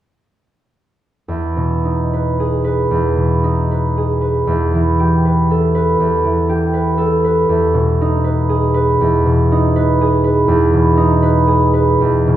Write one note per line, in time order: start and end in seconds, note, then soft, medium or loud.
1.28 2.90 E2 soft
1.57 3.16 B2 soft
1.85 3.43 D#4 soft
2.13 2.63 B4 soft
2.40 3.96 G#4 soft
2.64 3.70 B4 soft
2.91 4.46 E2 soft
3.17 4.51 B2 soft
3.44 4.51 D#4 soft
3.71 4.20 B4 soft
3.98 4.51 G#4 soft
4.21 5.24 B4 soft
4.47 5.99 E2 soft
4.74 6.23 E3 soft
4.99 6.48 G4 soft
5.25 5.74 B4 soft
5.51 6.96 A4 soft
5.75 6.72 B4 soft
6.00 7.48 E2 soft
6.24 7.54 E3 soft
6.49 7.53 G4 soft
6.74 7.23 B4 soft
6.98 7.53 A4 soft
7.24 8.23 B4 soft
7.49 9.00 E2 medium
7.74 9.25 B2 soft
8.01 9.51 D#4 soft
8.24 8.73 B4 soft
8.49 10.00 G#4 soft
8.74 9.75 B4 soft
9.01 10.47 E2 soft
9.26 10.72 B2 soft
9.52 10.96 D#4 soft
9.76 10.23 B4 medium
10.01 11.46 G#4 medium
10.24 11.21 B4 soft
10.48 12.00 E2 medium
10.74 12.26 B2 soft
10.97 12.37 D#4 medium
11.23 11.72 B4 medium
11.48 12.37 G#4 soft
11.74 12.37 B4 soft
12.01 12.37 E2 medium
12.27 12.37 B2 soft